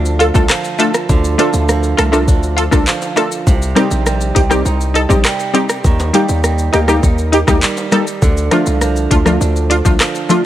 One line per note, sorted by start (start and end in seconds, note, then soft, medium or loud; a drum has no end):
0.00 0.31 D2 loud
0.00 1.08 D3 medium
0.00 0.49 F3 medium
0.00 1.38 A3 medium
0.00 1.39 D4 medium
0.05 shaker medium
0.05 maracas soft
0.19 0.26 F4 medium
0.19 0.26 A4 loud
0.19 closed hi-hat medium
0.19 shaker medium
0.34 0.48 C2 medium
0.34 0.46 A3 medium
0.34 0.47 D4 medium
0.34 0.47 F4 medium
0.34 0.47 A4 medium
0.34 kick loud
0.34 maracas medium
0.34 shaker medium
0.49 1.38 F3 medium
0.49 cross-stick loud
0.49 clap loud
0.49 maracas medium
0.49 shaker medium
0.64 maracas soft
0.64 shaker medium
0.79 0.91 A3 medium
0.79 0.91 D4 medium
0.79 0.91 F4 medium
0.79 0.92 A4 loud
0.79 closed hi-hat medium
0.79 maracas soft
0.79 shaker medium
0.94 cross-stick loud
0.94 maracas medium
0.94 shaker medium
1.09 1.36 D2 loud
1.09 3.46 D3 medium
1.09 kick loud
1.09 shaker medium
1.09 maracas medium
1.24 maracas medium
1.24 shaker medium
1.38 1.67 F3 medium
1.38 1.50 A3 medium
1.38 1.97 A3 medium
1.38 1.51 D4 medium
1.38 2.27 D4 medium
1.38 1.51 F4 medium
1.38 1.51 A4 loud
1.38 closed hi-hat medium
1.38 shaker medium
1.53 1.94 D2 medium
1.53 maracas medium
1.53 shaker medium
1.69 2.86 F3 medium
1.69 cross-stick medium
1.69 maracas medium
1.69 shaker medium
1.83 maracas medium
1.83 shaker medium
1.97 2.30 C2 medium
1.97 3.53 A3 medium
1.97 2.04 F4 medium
1.97 2.05 A4 medium
1.97 cross-stick loud
1.97 closed hi-hat medium
1.97 shaker medium
1.97 maracas soft
2.12 2.24 A3 medium
2.12 2.25 D4 medium
2.12 2.25 F4 medium
2.12 2.25 A4 medium
2.12 cross-stick medium
2.12 maracas medium
2.12 shaker medium
2.28 2.69 D2 loud
2.28 3.53 D4 medium
2.28 kick medium
2.28 maracas medium
2.28 shaker medium
2.43 maracas soft
2.43 shaker medium
2.57 2.63 F4 medium
2.57 2.64 A4 loud
2.57 closed hi-hat medium
2.57 shaker medium
2.71 2.86 C2 medium
2.71 2.84 A3 medium
2.71 2.84 D4 medium
2.71 2.84 F4 medium
2.71 2.85 A4 medium
2.71 kick loud
2.71 cross-stick loud
2.71 maracas medium
2.71 shaker medium
2.87 3.53 F3 medium
2.87 clap loud
2.87 high timbale medium
2.87 maracas medium
2.87 shaker medium
3.02 high timbale medium
3.02 maracas soft
3.02 shaker medium
3.16 3.29 A3 medium
3.16 3.29 D4 medium
3.16 3.29 F4 medium
3.16 3.29 A4 loud
3.16 cross-stick loud
3.16 closed hi-hat medium
3.16 maracas soft
3.16 shaker medium
3.32 maracas medium
3.32 shaker medium
3.47 3.74 C2 loud
3.47 5.84 C3 medium
3.47 kick loud
3.47 shaker medium
3.47 maracas medium
3.62 shaker medium
3.62 maracas medium
3.75 3.88 G3 medium
3.75 4.06 G3 medium
3.75 3.88 C4 medium
3.75 4.35 C4 medium
3.75 3.88 D#4 medium
3.75 4.65 D#4 medium
3.75 3.89 G4 loud
3.75 cross-stick loud
3.75 closed hi-hat medium
3.75 shaker medium
3.91 4.32 A#1 medium
3.91 maracas medium
3.91 shaker medium
4.06 5.25 G3 medium
4.06 cross-stick medium
4.06 maracas medium
4.06 shaker medium
4.21 maracas medium
4.21 shaker medium
4.35 4.63 C2 medium
4.35 5.90 C4 medium
4.35 4.41 D#4 medium
4.35 4.42 G4 medium
4.35 kick medium
4.35 closed hi-hat medium
4.35 shaker medium
4.35 maracas medium
4.50 4.62 G3 medium
4.50 4.62 C4 medium
4.50 4.63 D#4 medium
4.50 4.63 G4 medium
4.50 cross-stick medium
4.50 maracas medium
4.50 shaker medium
4.65 5.06 C2 loud
4.65 6.15 D#4 medium
4.65 maracas medium
4.65 shaker medium
4.81 shaker medium
4.81 maracas soft
4.94 5.01 D#4 medium
4.94 5.01 A4 loud
4.94 closed hi-hat medium
4.94 shaker medium
5.09 5.24 A#1 medium
5.09 5.21 G3 medium
5.09 5.22 C4 medium
5.09 5.22 D#4 medium
5.09 5.22 G4 medium
5.09 kick loud
5.09 maracas medium
5.09 shaker medium
5.25 6.14 G3 medium
5.25 cross-stick loud
5.25 clap loud
5.25 maracas medium
5.25 shaker medium
5.40 maracas soft
5.40 shaker medium
5.54 5.66 G3 medium
5.54 5.66 C4 medium
5.54 5.67 D#4 medium
5.54 5.67 G4 loud
5.54 closed hi-hat medium
5.54 maracas soft
5.54 shaker medium
5.69 cross-stick loud
5.69 maracas medium
5.69 shaker medium
5.84 6.11 D#2 loud
5.84 8.22 D#3 medium
5.84 kick loud
5.84 shaker medium
5.84 maracas medium
5.99 high timbale medium
5.99 shaker medium
5.99 maracas medium
6.13 6.26 G3 medium
6.13 6.43 G3 medium
6.13 6.26 A#3 medium
6.13 6.72 A#3 medium
6.13 6.26 D#4 medium
6.13 7.02 D#4 medium
6.13 6.26 G4 loud
6.13 closed hi-hat medium
6.13 shaker medium
6.29 6.70 D#2 loud
6.29 maracas medium
6.29 shaker medium
6.44 7.61 G3 medium
6.44 cross-stick medium
6.44 shaker medium
6.44 maracas medium
6.58 maracas medium
6.58 shaker medium
6.73 7.00 D2 medium
6.73 8.28 A#3 medium
6.73 6.79 D#4 medium
6.73 6.80 G4 medium
6.73 cross-stick loud
6.73 closed hi-hat medium
6.73 shaker medium
6.88 7.00 G3 medium
6.88 7.00 A#3 medium
6.88 7.00 D#4 medium
6.88 7.01 G4 medium
6.88 cross-stick medium
6.88 shaker medium
6.88 maracas medium
7.03 7.44 D#2 loud
7.03 8.28 D#4 medium
7.03 kick medium
7.03 maracas medium
7.03 shaker medium
7.18 shaker medium
7.18 maracas soft
7.32 7.39 D#4 medium
7.32 7.39 G4 loud
7.32 closed hi-hat medium
7.32 shaker medium
7.47 7.61 D2 medium
7.47 7.59 G3 medium
7.47 7.60 A#3 medium
7.47 7.60 D#4 medium
7.47 7.60 G4 medium
7.47 kick loud
7.47 cross-stick loud
7.47 maracas medium
7.47 shaker medium
7.62 8.28 G3 medium
7.62 clap loud
7.62 maracas medium
7.62 shaker medium
7.77 high timbale medium
7.77 maracas medium
7.77 shaker medium
7.92 8.04 G3 medium
7.92 8.04 A#3 medium
7.92 8.04 D#4 medium
7.92 8.05 A4 loud
7.92 cross-stick medium
7.92 closed hi-hat medium
7.92 maracas soft
7.92 shaker medium
8.07 maracas medium
8.07 shaker medium
8.22 8.49 D2 loud
8.22 10.46 D3 medium
8.22 kick loud
8.22 shaker medium
8.22 maracas medium
8.37 shaker medium
8.37 maracas medium
8.51 8.63 F3 medium
8.51 8.80 F3 medium
8.51 8.64 A3 medium
8.51 9.10 A3 medium
8.51 8.64 D4 medium
8.51 9.40 D4 medium
8.51 8.64 F4 loud
8.51 cross-stick loud
8.51 closed hi-hat medium
8.51 shaker medium
8.66 9.07 C2 medium
8.66 maracas medium
8.66 shaker medium
8.81 9.99 F3 medium
8.81 cross-stick medium
8.81 shaker medium
8.81 maracas medium
8.96 shaker medium
8.96 maracas medium
9.11 9.38 D2 medium
9.11 10.46 A3 medium
9.11 9.17 D4 medium
9.11 9.18 F4 medium
9.11 kick loud
9.11 closed hi-hat medium
9.11 shaker medium
9.11 maracas medium
9.25 9.38 F3 medium
9.25 9.38 A3 medium
9.25 9.38 D4 medium
9.25 9.38 F4 medium
9.25 cross-stick medium
9.25 shaker medium
9.25 maracas medium
9.41 9.81 D2 loud
9.41 10.46 D4 medium
9.41 shaker medium
9.41 maracas medium
9.56 shaker soft
9.56 maracas soft
9.70 9.76 D4 medium
9.70 9.77 F4 medium
9.70 closed hi-hat medium
9.70 shaker medium
9.85 9.99 C2 medium
9.85 9.97 F3 medium
9.85 9.97 A3 medium
9.85 9.98 D4 medium
9.85 9.98 F4 medium
9.85 kick loud
9.85 maracas medium
9.85 shaker medium
10.00 10.46 F3 medium
10.00 cross-stick loud
10.00 clap medium
10.00 maracas medium
10.00 shaker medium
10.15 maracas soft
10.15 shaker medium
10.29 10.42 F3 medium
10.29 10.42 A3 medium
10.29 10.42 D4 medium
10.29 10.42 F4 loud
10.29 closed hi-hat medium
10.29 maracas soft
10.29 shaker medium